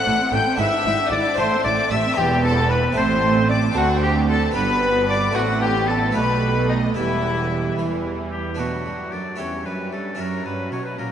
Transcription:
Already playing: harpsichord C4 E4 A4, violin section F#5 F#6, oboe F#5
0.05 double bass section A1, cello section A2, harpsichord A2, viola section A3
0.20 viola section C4
0.31 double bass section A1, cello section A2, harpsichord A2, viola section A3, violin section G5 G6, oboe G5
0.47 viola section C4
0.55 double bass section G#1, cello section G#2, harpsichord D4 E4 B4, oboe E5, violin section E6
0.59 harpsichord G#2, viola section E4, violin section E5
0.73 viola section D4
0.85 double bass section G#1, cello section G#2, harpsichord G#2, viola section E4
0.99 viola section D4
1.11 double bass section G#1, cello section G#2, harpsichord G#2, viola section E4, violin section D5 D6, oboe D5
1.26 viola section D4
1.34 cello section A2, harpsichord C4 E4 A4, violin section C6
1.38 double bass section A1, harpsichord A2, viola section A3, oboe C5, violin section C5
1.53 viola section C4
1.64 double bass section A1, cello section A2, harpsichord A2, viola section A3, oboe D5, violin section D5 D6
1.80 viola section C4
1.90 double bass section A1, cello section A2, harpsichord A2, viola section A3, oboe E5, violin section E5 E6
2.06 viola section C4
2.13 cello section E2, harpsichord B3 E4 G4, violin section G5
2.17 double bass section E1, harpsichord E2, viola section B3, violin section G4, oboe G4
2.43 oboe A4, violin section A4 A5
2.70 violin section B4 B5, oboe B4
2.92 cello section A2, harpsichord C4 E4 A4, violin section C6
2.97 double bass section A1, harpsichord A2, viola section C4, violin section C5, oboe C5
3.48 violin section D5 D6, oboe D5
3.71 harpsichord C4 D4 A4, violin section F#4 F#5
3.76 double bass section D2, cello section D2, harpsichord D2, viola section C4, oboe F#4
4.01 violin section G4 G5, oboe G4
4.28 violin section A4 A5, oboe A4
4.51 harpsichord B3 D4 G4, violin section B4 B5
4.55 double bass section G1, cello section G2, harpsichord G2, viola section B3, oboe B4
5.08 violin section D5 D6, oboe D5
5.31 harpsichord A3 C4 F#4, violin section F#4
5.35 double bass section A1, cello section A2, harpsichord A2, viola section C4, oboe F#4, violin section F#5
5.61 violin section G4 G5, oboe G4
5.75 viola section B3
5.88 oboe A4, violin section A4 A5
6.11 harpsichord A3 B3 D#4, viola section A3, oboe B4
6.16 double bass section B1, harpsichord B2, cello section B2, violin section B4 B5
6.69 violin section D#4 D#5, oboe D#4
6.94 double bass section E1, cello section E2, harpsichord E2 B3 E4, viola section G3, oboe E4, violin section E4 E5
7.77 double bass section E2, cello section E3, harpsichord E3
8.31 oboe G4
8.55 harpsichord B3 D4 F#4, violin section F#5
8.59 harpsichord B2, cello section B2, viola section F#3, violin section D4, oboe F#4
8.85 cello section G2, harpsichord G2
9.12 harpsichord F#2, cello section F#2, oboe D5
9.36 cello section E2, harpsichord C#4 E4 G4, violin section C#4 E5, oboe C#5
9.40 harpsichord E2, viola section G3
9.65 cello section F#2, harpsichord F#2, oboe B4
9.92 cello section G2, harpsichord G2, oboe A4
10.15 cello section F#2, viola section F#3, harpsichord C#4 E4 F#4, violin section C#4 A#5
10.19 harpsichord F#2, oboe A#4
10.45 cello section G2, harpsichord G2, oboe B4
10.71 cello section B2, harpsichord B2, oboe C#5
10.86 oboe B4
10.97 cello section A#2, harpsichord A#2, viola section F#3, oboe A#4

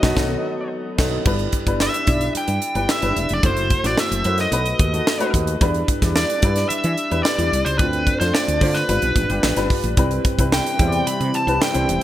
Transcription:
Already playing: analog synth pad D#3 F#3 A3 B3 F#4, grand piano F#3 B3 D#4 A4, lead electric guitar D#5
0.02 fretless electric bass B1, grand piano F#3 B3 D#4 A4, kick, snare
0.16 fretless electric bass B1, grand piano F#3 B3 D#4 A4, kick, snare
0.98 fretless electric bass B1, grand piano F#3 B3 D#4 A4, kick, snare, crash
1.25 fretless electric bass G1, grand piano G3 D4 E4 B4, kick, crash
1.39 closed hi-hat
1.52 kick, closed hi-hat
1.66 fretless electric bass G1, grand piano G3 D4 E4 B4, kick, closed hi-hat
1.80 lead electric guitar E5, snare
1.94 closed hi-hat
2.06 fretless electric bass B1, grand piano G3 D4 E4 D5, kick, closed hi-hat
2.21 closed hi-hat
2.35 lead electric guitar G5, muted fretless electric bass stroke, closed hi-hat
2.48 fretless electric bass G2, closed hi-hat
2.62 closed hi-hat
2.75 fretless electric bass G1, grand piano G3 D4 E4 B4, closed hi-hat
2.89 lead electric guitar E5, snare
3.02 fretless electric bass G1, grand piano G3 D4 E4 B4, closed hi-hat
3.16 fretless electric bass E1, closed hi-hat
3.29 fretless electric bass F1, closed hi-hat
3.34 lead electric guitar D5
3.43 fretless electric bass F#1, grand piano A3 E4 F#4 C5, lead electric guitar C5, kick, closed hi-hat
3.57 closed hi-hat
3.70 kick, closed hi-hat
3.83 fretless electric bass A1, grand piano A3 E4 F#4 C5, lead electric guitar D5, snare, closed hi-hat
3.98 lead electric guitar E5, snare
4.11 fretless electric bass F#1, closed hi-hat
4.24 fretless electric bass F#2, grand piano A3 E4 F#4 C5, closed hi-hat
4.38 lead electric guitar D#5, snare, closed hi-hat
4.52 fretless electric bass B1, grand piano A3 D#4 F#4 B4, closed hi-hat
4.66 closed hi-hat
4.79 fretless electric bass D#2, kick, closed hi-hat
4.93 grand piano A3 D#4 F#4 A4, closed hi-hat
5.07 snare
5.19 grand piano A3 D#4 F#4 B4, closed hi-hat
5.34 fretless electric bass D#2, kick, closed hi-hat
5.47 closed hi-hat
5.61 fretless electric bass E2, grand piano G3 D4 E4 B4, kick, closed hi-hat
5.74 closed hi-hat
5.88 kick, closed hi-hat
6.02 fretless electric bass E2, grand piano G3 D4 E4 D5, kick, snare, closed hi-hat
6.16 lead electric guitar D5, snare
6.30 closed hi-hat
6.42 fretless electric bass G2, grand piano G3 D4 E4 B4, kick, closed hi-hat
6.56 snare, closed hi-hat
6.69 lead electric guitar E5, muted fretless electric bass stroke, closed hi-hat
6.84 fretless electric bass E3, closed hi-hat
6.97 closed hi-hat
7.10 fretless electric bass E2, grand piano G3 D4 E4 B4, closed hi-hat
7.23 lead electric guitar D5, snare
7.38 fretless electric bass E2, grand piano G3 D4 E4 D5, closed hi-hat
7.52 fretless electric bass C2, closed hi-hat
7.65 fretless electric bass C#2, lead electric guitar C5, closed hi-hat
7.78 fretless electric bass D2, grand piano A3 C4 D4 F4, lead electric guitar B4, kick, closed hi-hat
7.93 closed hi-hat
8.07 kick, closed hi-hat
8.20 fretless electric bass F2, grand piano A3 D4 F4 C5, lead electric guitar C5, snare, closed hi-hat
8.34 lead electric guitar D5, snare
8.48 fretless electric bass D2, closed hi-hat
8.61 fretless electric bass D3, grand piano A3 D4 F4 C5, kick, open hi-hat
8.74 lead electric guitar B4, snare, closed hi-hat
8.88 fretless electric bass G1, grand piano G3 D4 F4 B4, closed hi-hat
9.02 fretless electric bass B1, closed hi-hat
9.16 fretless electric bass A1, kick, closed hi-hat
9.29 fretless electric bass G1, grand piano G3 D4 F4 G4, closed hi-hat
9.43 fretless electric bass A1, snare
9.56 fretless electric bass G1, grand piano G3 D4 F4 B4, snare, closed hi-hat
9.70 kick, open hi-hat
9.84 fretless electric bass A1, closed hi-hat
9.97 fretless electric bass C2, analog synth pad C3 E3 G3 C4 E4, grand piano G3 C4 E4 B4, kick, closed hi-hat
10.11 closed hi-hat
10.25 kick, closed hi-hat
10.39 fretless electric bass C2, grand piano G3 C4 E4 B4, kick, closed hi-hat
10.52 lead electric guitar G5, snare
10.67 closed hi-hat
10.79 fretless electric bass E2, grand piano G3 C4 E4 C5, kick, closed hi-hat
10.87 grand piano D5
10.92 closed hi-hat
11.07 lead electric guitar B5, muted fretless electric bass stroke, closed hi-hat
11.20 fretless electric bass C3, closed hi-hat
11.34 lead electric guitar A5, closed hi-hat
11.47 fretless electric bass C2, grand piano G3 C4 E4 B4, closed hi-hat
11.62 lead electric guitar G5, snare
11.73 fretless electric bass C2, grand piano G3 C4 E4 C5, closed hi-hat
11.89 fretless electric bass E1, closed hi-hat

